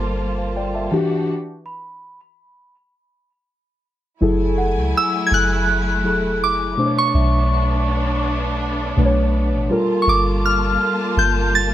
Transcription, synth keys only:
0.00 0.94 G3 medium
0.00 0.94 F4 medium
0.00 0.94 A4 medium
0.00 0.94 A#4 loud
0.00 0.39 C5 loud
0.38 0.56 C5 medium
0.38 0.55 F5 medium
0.56 0.74 D5 medium
0.56 0.74 G5 medium
0.75 1.09 E5 medium
0.75 1.09 A5 medium
0.92 1.21 E3 loud
0.92 1.22 D4 medium
0.92 1.22 F#4 medium
0.92 1.22 G4 loud
4.21 5.11 F#3 medium
4.21 5.11 E4 medium
4.21 5.12 G#4 medium
4.21 5.12 A4 loud
6.04 6.72 F#3 medium
6.04 6.72 E4 medium
6.04 6.72 G#4 medium
6.04 6.73 A4 medium
6.77 7.95 B2 medium
6.77 7.95 A3 medium
6.77 7.95 D4 medium
6.77 6.85 C5 medium
6.86 7.99 C#5 medium
8.97 9.64 B2 medium
8.97 9.65 A3 medium
8.97 9.65 D4 medium
8.97 9.05 B4 medium
9.05 9.69 C#5 loud
9.70 10.87 G3 loud
9.70 10.88 F4 medium
9.70 10.88 A4 medium
9.70 10.88 A#4 loud

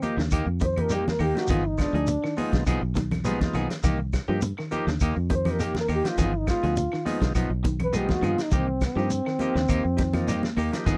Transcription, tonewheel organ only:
0.02 0.21 F3 medium
0.02 0.21 A#3 medium
0.02 0.21 D#4 medium
0.02 0.21 G4 medium
0.61 0.66 D#4 medium
0.61 0.66 G4 medium
0.77 0.94 F3 medium
0.77 0.94 A#3 medium
0.77 0.94 D#4 medium
0.77 0.94 G4 medium
1.35 1.48 F3 medium
1.35 1.48 A#3 medium
1.35 1.48 D#4 medium
1.35 1.48 G4 medium
1.78 1.97 G#3 medium
1.78 1.97 B3 medium
1.78 1.97 D#4 medium
1.78 1.97 F4 medium
2.37 2.64 G#3 medium
2.37 2.64 B3 medium
2.37 2.64 D#4 medium
2.37 2.64 F4 medium
3.24 3.56 G#3 medium
3.24 3.56 B3 medium
3.24 3.57 D#4 medium
3.24 3.57 F4 loud
4.28 4.41 F3 medium
4.28 4.41 A#3 medium
4.28 4.41 D#4 medium
4.28 4.41 G4 loud
4.71 4.90 F3 loud
4.71 4.90 A#3 medium
4.71 4.90 D#4 medium
4.71 4.90 G4 loud
5.30 5.35 D#4 medium
5.30 5.35 G4 medium
5.45 5.63 F3 medium
5.45 5.63 A#3 medium
5.45 5.63 D#4 medium
5.45 5.63 G4 medium
6.04 6.17 F3 medium
6.04 6.17 A#3 medium
6.04 6.17 D#4 medium
6.04 6.17 G4 medium
6.47 6.66 G#3 medium
6.47 6.66 B3 medium
6.47 6.66 D#4 medium
6.47 6.66 F4 medium
7.05 7.33 G#3 medium
7.05 7.33 B3 medium
7.05 7.33 D#4 medium
7.05 7.33 F4 medium
7.94 8.26 G#3 medium
7.94 8.25 B3 medium
7.94 8.26 D#4 medium
7.94 8.25 F4 medium
8.95 9.09 F3 medium
8.95 9.10 A#3 medium
8.95 9.10 D#4 medium
8.95 9.09 G4 medium
9.39 9.59 F3 medium
9.39 9.59 A#3 medium
9.39 9.59 D#4 medium
9.39 9.59 G4 medium
9.97 10.03 D#4 medium
9.97 10.03 G4 loud
10.13 10.32 F3 medium
10.13 10.31 A#3 medium
10.13 10.31 D#4 medium
10.13 10.32 F4 medium
10.72 10.86 F3 loud
10.72 10.86 A#3 medium
10.72 10.86 D#4 medium
10.72 10.86 G4 loud

